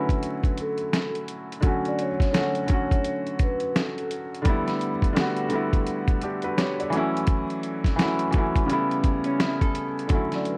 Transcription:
Already playing: D3 F#3 A3 C#4 E4 F#4 B4
0.09 kick, closed hi-hat
0.23 closed hi-hat
0.44 kick, closed hi-hat
0.58 A4, closed hi-hat
0.78 closed hi-hat
0.93 snare, closed hi-hat
1.15 closed hi-hat
1.28 closed hi-hat
1.52 closed hi-hat
1.61 D3 F#3 A3, kick, closed hi-hat
1.66 C#4 F#4
1.85 D5, closed hi-hat
1.99 C#5, closed hi-hat
2.20 kick, snare, closed hi-hat
2.31 D3 F#3 A3, snare, closed hi-hat
2.37 C#4 F#4
2.55 closed hi-hat
2.67 D3 F#3 A3, kick, closed hi-hat
2.71 C#4 F#4
2.91 kick, closed hi-hat
3.04 closed hi-hat
3.27 closed hi-hat
3.39 B4, kick, closed hi-hat
3.60 closed hi-hat
3.76 A4, snare, closed hi-hat
3.98 closed hi-hat
4.11 closed hi-hat
4.35 closed hi-hat
4.42 D3 G3 A3, kick, closed hi-hat
4.47 B3 E4
4.68 snare, closed hi-hat
4.81 closed hi-hat
5.02 kick, closed hi-hat
5.13 D3 G3 A3, snare, closed hi-hat
5.18 B3 F#4
5.37 closed hi-hat
5.49 D3 G3 A3, closed hi-hat
5.54 B3 E4
5.73 kick, closed hi-hat
5.87 closed hi-hat
6.08 kick, closed hi-hat
6.21 D4 G4, closed hi-hat
6.42 F#4 B4, closed hi-hat
6.58 G4 C#5, snare, closed hi-hat
6.80 A4 D5, closed hi-hat
6.90 E3 F#3 A3, closed hi-hat
6.96 C#4 E4
7.17 closed hi-hat
7.27 kick, closed hi-hat
7.50 closed hi-hat
7.63 closed hi-hat
7.84 kick, snare, closed hi-hat
7.96 E3 F#3 A3, snare, closed hi-hat
8.01 C#4 E4
8.19 closed hi-hat
8.31 E3 F#3 A3, kick, closed hi-hat
8.36 C#4 E4
8.56 kick, closed hi-hat
8.66 C#3 G3 A3, closed hi-hat
8.71 B3 E4
8.91 closed hi-hat
9.04 kick, closed hi-hat
9.24 C#4, closed hi-hat
9.40 E4, snare, closed hi-hat
9.61 A4, kick, closed hi-hat
9.75 closed hi-hat
9.99 closed hi-hat
10.08 D3 F#3 A3 E4, kick, closed hi-hat
10.12 E3 F#3 A3 C#4 E4 A4
10.32 D5, snare, closed hi-hat
10.45 B4, closed hi-hat

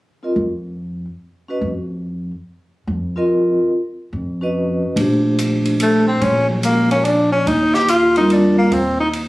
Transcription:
0.23 C4 F4 A#4 D#5
0.36 F2
1.48 C#4 F#4 B4 D#5
1.61 F2
2.87 F2
3.16 C4 F4 A#4 D#5
4.13 F2
4.41 C#4 F#4 B4 D#5
4.96 A#1 A3 D4 G4 C5, kick, ride
5.38 hi-hat pedal, ride
5.65 ride
5.80 A3, ride
6.08 C4
6.21 A#1 C#4, kick, ride
6.50 F#3
6.63 G#3 A#3 C#4 F#4 A#4, hi-hat pedal, ride
6.91 C#4, ride
7.05 D4, ride
7.33 C#4
7.46 D#2 D#4, kick, ride
7.74 G4, snare
7.88 F4, hi-hat pedal, ride
8.16 G3 C4 D#4 F4 A#4, ride
8.30 D4, ride
8.58 A#3
8.71 D#2 C4, kick, ride
9.00 D#4
9.13 ride

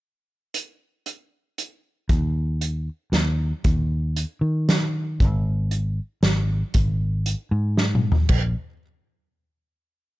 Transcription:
0.54 closed hi-hat
1.06 closed hi-hat
1.58 closed hi-hat
2.09 D#2, kick, closed hi-hat
2.61 closed hi-hat
3.12 D#2, snare, closed hi-hat
3.64 D#2, kick, closed hi-hat
4.16 closed hi-hat
4.41 D#3
4.69 snare, closed hi-hat
5.20 G#1, kick, closed hi-hat
5.71 closed hi-hat
6.23 G#1, snare, closed hi-hat
6.74 G#1, kick, closed hi-hat
7.26 closed hi-hat
7.51 G#2
7.77 snare
7.95 mid tom
8.12 floor tom
8.29 A#1, kick, crash

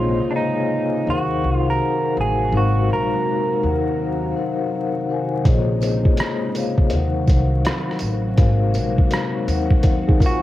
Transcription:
Already playing: A#1 C3 C#3 G#3 A#3 D#4 F4 G#4 C5 C#5 D#5
0.20 A#3 F4 G#4 C5 C#5 F5
0.31 D4 G#5
0.35 D#4 C5
0.72 C#5 A#5
0.96 G#4 F5
1.05 D#2 D#3 F#3 D#4 F#4 A#4 C5
1.10 F#4 F5 F#5
1.44 C2
1.54 F4
1.70 A#4
2.17 A1 G#4
2.52 G#1 C3 G#3 A#3 D#4 F#4 A#4 C5
2.56 F#4 F5
2.90 A#1 A#4
3.13 G#3 D#4 F#4 A#4 C5 F5
3.62 D#2 C3 D#3 D#4 A#4 C5 F5 F#5
4.36 D#4 A#4 C5 F5 F#5
5.09 D#4 A#4 C5 F5 G#5
5.44 A#1 C#3 G#3 A#3 D#4 F4 G#4 C5 C#5 D#5, kick, closed hi-hat
5.82 closed hi-hat, tambourine
6.05 A#3 F4 G#4 C5 C#5 D#5, kick
6.17 cross-stick, closed hi-hat
6.55 A#3 F4 G#4 C5 C#5 F5, closed hi-hat, tambourine
6.78 kick
6.90 D#2 D#3 F#3 D#4 F#4 A#4 C5, closed hi-hat
6.94 F5 F#5
7.27 C2, kick, closed hi-hat, tambourine
7.65 cross-stick, closed hi-hat
7.91 cross-stick
7.99 A1, closed hi-hat, tambourine
8.36 G#1 C3 G#3 A#3 D#4 F#4 A#4 C5 F5, kick, closed hi-hat
8.74 A#1, closed hi-hat, tambourine
8.98 G#3 F#4 A#4 C5 F5, kick
9.11 cross-stick, closed hi-hat
9.47 D#2 D#3 C4 D#4 A#4 C5 F5 F#5, closed hi-hat, tambourine
9.71 kick
9.83 kick, closed hi-hat
10.08 D#4 G#4, kick
10.20 D#4 F4 A#4 C5 G#5, kick, closed hi-hat, tambourine
10.26 F#4

